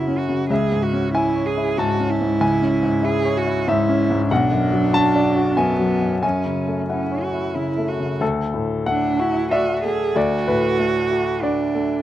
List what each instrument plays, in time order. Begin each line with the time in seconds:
Already playing: grand piano F#2 C#3 C#4 F#4 C#5 F#5 G#5, cello E4
0.07 grand piano C#4
0.18 cello F#4
0.29 grand piano C#3
0.50 grand piano C#2 E5, cello G#4
0.72 grand piano G#2
0.82 cello F#4
0.93 grand piano C#4
1.15 cello E4, grand piano E4 G#5
1.36 grand piano C#5
1.46 cello G#4
1.57 grand piano E4
1.78 grand piano G#2 A5, cello F#4
2.00 grand piano C#4
2.10 cello E4
2.21 grand piano G#2
2.41 grand piano C#2 G#5
2.62 grand piano C#4
2.83 grand piano G#2
3.03 grand piano E4, cello G#4
3.25 grand piano C#5
3.37 cello F#4
3.46 grand piano E4
3.68 grand piano G#2 E5, cello E4
3.89 grand piano C#4
4.10 grand piano G#2
4.30 grand piano B1 F#5, cello D4
4.52 grand piano F#2
4.72 grand piano F#3
4.93 grand piano F#4 A5
5.16 grand piano D5
5.36 grand piano F#4
5.57 grand piano F#2 G#5, cello B3
5.79 grand piano F#3
6.02 grand piano F#2
6.23 grand piano F#2 G#5, cello C#4
6.46 grand piano C#3
6.67 grand piano A3
6.90 cello C#4, grand piano E4 F#5
7.12 grand piano C#5
7.23 cello F#4
7.33 grand piano E4
7.54 grand piano C#3, cello E4
7.78 grand piano A3
7.88 cello F#4
8.00 grand piano C#3
8.21 grand piano D2 A4
8.54 grand piano A2
8.86 grand piano A3 F#5, cello D4
9.19 cello E4, grand piano F#4
9.51 cello F#4, grand piano D5 E5
9.84 grand piano A3, cello G#4
10.15 grand piano D2 D5, cello F#4
10.48 grand piano A2 B4
10.79 grand piano A3
11.11 grand piano F#4
11.43 cello D4, grand piano D5
11.75 grand piano A3